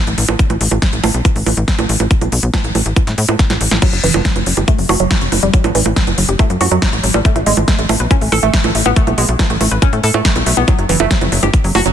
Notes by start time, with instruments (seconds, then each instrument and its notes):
0.07 analog synth bass A1, closed hi-hat
0.18 analog synth bass A1, open hi-hat
0.29 analog synth bass A1, high bongo
0.39 kick, closed hi-hat
0.50 analog synth bass A1, closed hi-hat, high bongo
0.61 analog synth bass A1, open hi-hat
0.71 analog synth bass A1, closed hi-hat, high bongo
0.82 kick, snare, closed hi-hat
0.93 analog synth bass A1, closed hi-hat
1.04 analog synth bass A1, open hi-hat, high bongo
1.14 analog synth bass B1, closed hi-hat
1.25 kick, closed hi-hat, high bongo
1.36 analog synth bass A1, open hi-hat
1.46 analog synth bass A1, open hi-hat, high bongo
1.57 analog synth bass A1, closed hi-hat
1.68 kick, snare, closed hi-hat
1.79 analog synth bass A1, closed hi-hat, high bongo
1.89 analog synth bass A1, open hi-hat
2.00 analog synth bass A1, closed hi-hat, high bongo
2.11 kick, closed hi-hat
2.21 analog synth bass B1, closed hi-hat, high bongo
2.32 analog synth bass B1, open hi-hat
2.43 analog synth bass B1, closed hi-hat
2.54 kick, snare, closed hi-hat, high bongo
2.64 analog synth bass A1, closed hi-hat
2.75 analog synth bass A1, open hi-hat, high bongo
2.86 analog synth bass A1, closed hi-hat
2.96 kick, closed hi-hat, high bongo
3.07 analog synth bass A2, snare, closed hi-hat
3.18 analog synth bass A2, open hi-hat
3.29 analog synth bass A2, closed hi-hat, high bongo
3.39 kick, snare, closed hi-hat
3.50 analog synth bass A1, snare, closed hi-hat, high bongo
3.61 analog synth bass A1, open hi-hat
3.71 analog synth bass A1, snare, closed hi-hat, high bongo
3.82 synth arpeggio sound F#3, kick, closed hi-hat, crash, high bongo
3.93 analog synth bass F#1, synth arpeggio sound F#3, closed hi-hat
4.04 analog synth bass F#1, synth arpeggio sound E3, open hi-hat
4.14 analog synth bass F#1, high bongo
4.25 synth arpeggio sound F#3, kick, snare, closed hi-hat
4.36 analog synth bass F#1, synth arpeggio sound F#3, closed hi-hat, high bongo
4.46 analog synth bass F#1, synth arpeggio sound F#3, open hi-hat
4.57 analog synth bass G1, synth arpeggio sound G4, closed hi-hat, high bongo
4.68 synth arpeggio sound A3, kick, closed hi-hat
4.79 analog synth bass F#1, synth arpeggio sound F#3, open hi-hat
4.89 analog synth bass F#1, synth arpeggio sound F#4, open hi-hat, high bongo
5.00 analog synth bass F#1, synth arpeggio sound F#3, closed hi-hat
5.11 synth arpeggio sound F#3, kick, snare, closed hi-hat, high bongo
5.21 analog synth bass F#1, closed hi-hat
5.32 analog synth bass F#1, synth arpeggio sound F#3, open hi-hat, high bongo
5.43 analog synth bass F#1, synth arpeggio sound G3, closed hi-hat
5.54 synth arpeggio sound F#3, kick, closed hi-hat
5.64 analog synth bass A1, synth arpeggio sound F#3, closed hi-hat, high bongo
5.75 analog synth bass A1, synth arpeggio sound E3, open hi-hat
5.86 analog synth bass A1, closed hi-hat, high bongo
5.96 synth arpeggio sound F#3, kick, snare, closed hi-hat
6.07 analog synth bass F#1, synth arpeggio sound F#3, closed hi-hat, high bongo
6.18 analog synth bass F#1, synth arpeggio sound F#3, open hi-hat
6.29 analog synth bass F#1, synth arpeggio sound G4, closed hi-hat
6.39 synth arpeggio sound A3, kick, closed hi-hat, high bongo
6.50 analog synth bass F#2, synth arpeggio sound F#3, closed hi-hat
6.61 analog synth bass F#2, synth arpeggio sound F#4, open hi-hat, high bongo
6.71 analog synth bass F#2, synth arpeggio sound F#3, closed hi-hat
6.82 synth arpeggio sound F#3, kick, snare, closed hi-hat, high bongo
6.93 analog synth bass A1, closed hi-hat
7.04 analog synth bass A1, synth arpeggio sound F#3, open hi-hat
7.14 analog synth bass A1, synth arpeggio sound G3, high bongo
7.25 synth arpeggio sound A3, kick, closed hi-hat
7.36 analog synth bass A1, synth arpeggio sound A3, closed hi-hat, high bongo
7.46 analog synth bass A1, synth arpeggio sound G#3, open hi-hat
7.57 analog synth bass A1, closed hi-hat, high bongo
7.68 synth arpeggio sound A3, kick, snare, closed hi-hat
7.79 analog synth bass A1, synth arpeggio sound A3, closed hi-hat
7.89 analog synth bass A1, synth arpeggio sound A3, open hi-hat, high bongo
8.00 analog synth bass B1, synth arpeggio sound B4, closed hi-hat
8.11 synth arpeggio sound C#4, kick, closed hi-hat, high bongo
8.21 analog synth bass A1, synth arpeggio sound A3, open hi-hat
8.32 analog synth bass A1, synth arpeggio sound A4, open hi-hat, high bongo
8.43 analog synth bass A1, synth arpeggio sound A3, closed hi-hat
8.54 kick, snare, closed hi-hat
8.64 analog synth bass A1, closed hi-hat, high bongo
8.75 analog synth bass A1, synth arpeggio sound A3, open hi-hat
8.86 analog synth bass A1, synth arpeggio sound B3, high bongo
8.96 synth arpeggio sound A3, kick, closed hi-hat
9.07 analog synth bass B1, synth arpeggio sound A3, closed hi-hat, high bongo
9.18 analog synth bass B1, synth arpeggio sound G#3, open hi-hat
9.29 analog synth bass B1, closed hi-hat
9.39 synth arpeggio sound A3, kick, snare, closed hi-hat, high bongo
9.50 analog synth bass A1, synth arpeggio sound A3, closed hi-hat
9.61 analog synth bass A1, synth arpeggio sound A3, open hi-hat, high bongo
9.71 analog synth bass A1, synth arpeggio sound B4, closed hi-hat
9.82 synth arpeggio sound C#4, kick, closed hi-hat, high bongo
9.93 analog synth bass A2, synth arpeggio sound A3, closed hi-hat
10.04 analog synth bass A2, synth arpeggio sound A4, open hi-hat
10.14 analog synth bass A2, synth arpeggio sound A3, closed hi-hat, high bongo
10.25 synth arpeggio sound A3, kick, snare, closed hi-hat
10.36 analog synth bass B1, closed hi-hat, high bongo
10.46 analog synth bass B1, synth arpeggio sound A3, open hi-hat
10.57 analog synth bass B1, synth arpeggio sound B3, high bongo
10.68 synth arpeggio sound F#3, kick, closed hi-hat, high bongo
10.79 analog synth bass F#1, synth arpeggio sound F#3, closed hi-hat
10.89 analog synth bass F#1, synth arpeggio sound E3, open hi-hat
11.00 analog synth bass F#1, synth arpeggio sound A3, closed hi-hat, high bongo
11.11 synth arpeggio sound F#3, kick, snare, closed hi-hat
11.21 analog synth bass F#1, synth arpeggio sound F#3, closed hi-hat, high bongo
11.32 analog synth bass F#1, synth arpeggio sound F#3, open hi-hat
11.43 analog synth bass G1, synth arpeggio sound G4, closed hi-hat, high bongo
11.54 kick, closed hi-hat
11.64 analog synth bass F#1, synth arpeggio sound F#3, open hi-hat
11.75 analog synth bass F#1, synth arpeggio sound F#4, open hi-hat, high bongo
11.86 analog synth bass F#1, synth arpeggio sound F#3, closed hi-hat